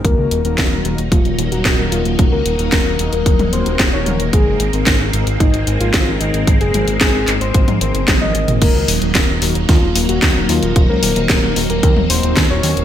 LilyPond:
<<
  \new Staff \with { instrumentName = "Soft synth lead" } { \time 4/4 \key ees \dorian \tempo 4 = 112 bes'8 r4. f'8 r16 ges'8 r16 f'8 | r16 bes'8 r16 bes'8 r16 bes'8 r16 c''8 r16 des''8 r16 | aes'8 r4. ees'8 r16 f'8 r16 ees'8 | r16 aes'8 r16 aes'8 r16 c''8 r16 c''8 r16 ees''8 r16 |
bes'8 r4. f'8 r16 ges'8 r16 f'8 | r16 bes'8 r16 bes'8 r16 bes'8 r16 c''8 r16 des''8 r16 | }
  \new Staff \with { instrumentName = "Analog polysynth" } { \time 4/4 \key ees \dorian <ees bes ges'>8. <ees bes ees' ges' bes'>8. <ees bes ees' ges' bes'>16 r8. <ees bes ees' ges' bes'>8. <ees bes ees' ges' bes'>8. | <ees bes ees' ges' bes'>8. <ees bes ees' ges' bes'>8. <ees bes ees' ges' bes'>16 r8. <ees bes ees' ges' bes'>8. <ees bes ees' ges' bes'>8. | <aes, ees' aes' bes'>8. <aes, c' ees' aes' bes'>8. <aes, c' ees' aes' bes'>16 r8. <aes, c' ees' aes' bes'>8. <aes, c' ees' aes' bes'>8. | <aes, c' ees' aes' bes'>8. <aes, c' ees' aes' bes'>8. <aes, c' ees' aes' bes'>16 r8. <aes, c' ees' aes' bes'>8. <aes, c' ees' aes' bes'>8. |
<ees bes ees' ges'>8. <ees bes ees' ges' bes'>8. <ees bes ees' ges' bes'>16 r8. <ees bes ees' ges' bes'>8. <ees bes ees' ges' bes'>8. | <ees bes ees' ges'>8. <ees bes ees' ges' bes'>8. <ees bes ees' ges' bes'>16 r8. <ees bes ees' ges' bes'>8. <ees bes ees' ges' bes'>8. | }
  \new Staff \with { instrumentName = "String machine" } { \time 4/4 \key ees \dorian << { <ges ees'>1~ | <ges ees'>1 | <aes c'>1~ | <aes c'>1 |
<ges ees'>1~ | <ges ees'>1 | } \\ { bes1~ | bes1~ | bes1~ | bes1 |
bes1 | c'1 | } >> }
  \new Staff \with { instrumentName = "Analog synth bass" } { \clef bass \time 4/4 \key ees \dorian ees,,16 des,16 ees,,16 ees,,16 ees,,16 ees,,16 ees,,16 ees,,16 ees,,16 ees,,16 ees,,16 ees,,16 ees,,16 ees,,16 ees,,16 ees,,16 | ees,,16 des,16 ees,,16 ees,,16 ees,,16 ees,,16 ees,,16 ees,,16 ees,,16 ees,,16 ees,,16 ees,,16 ees,,16 ees,,16 ees,,16 ees,,16 | aes,,16 ges,,16 aes,,16 aes,,16 aes,,16 aes,,16 aes,,16 aes,,16 aes,,16 aes,,16 aes,,16 aes,,16 aes,,16 aes,,16 aes,,16 aes,,16 | aes,,16 ges,,16 aes,,16 aes,,16 aes,,16 aes,,16 aes,,16 aes,,16 aes,,16 aes,16 aes,,16 ges,,16 aes,,16 aes,,16 aes,,16 aes,,16 |
ees,,16 des,16 ees,,16 ees,,16 ees,,16 ees,,16 ees,,16 ees,,16 ees,16 ees,,16 ees,,16 ees,,16 ees,16 ees,,16 ees,16 ees,,16 | ees,,16 des,16 ees,,16 ees,,16 ees,,16 ees,,16 ees,,16 ees,,16 ees,16 ees,,16 ees,,16 ees,,16 ees,16 ees,,16 ees,16 ees,,16 | }
  \new DrumStaff \with { instrumentName = "Drums" } \drummode { \time 4/4 <hh bd>8 hh16 hh16 <hc hh bd sn>8 hh16 hh16 <hh bd>16 hh16 hh16 hh16 <hc hh bd sn>8 hh16 hh16 | <hh bd>8 hh16 hh16 <hc hh bd sn>8 hh16 hh16 <hh bd>16 <hh tommh>16 hh16 hh16 <hc hh bd sn>8 <hh tommh>16 hh16 | <hh bd>8 hh16 hh16 <hc hh bd sn>8 hh16 hh16 <hh bd>16 hh16 hh16 hh16 <hc hh bd sn>8 hh16 hh16 | <hh bd>16 hh16 <hh tommh>16 hh16 <hc hh bd sn>8 <hc hh>16 hh16 <hh bd>16 <hh tommh>16 hh16 hh16 <hc hh bd sn tommh>16 tommh16 hh16 <hh toml>16 |
<cymc hh bd>8 hho16 hh16 <hc hh bd sn>8 hho16 hh16 <hh bd sn>8 hho16 hh16 <hc hh bd sn>8 hho16 hh16 | <hh bd>8 hho16 hh16 <hc hh bd sn>8 hho16 hh16 <hh bd>16 tommh16 hho16 hh16 <hc hh bd sn>8 hho16 hh16 | }
>>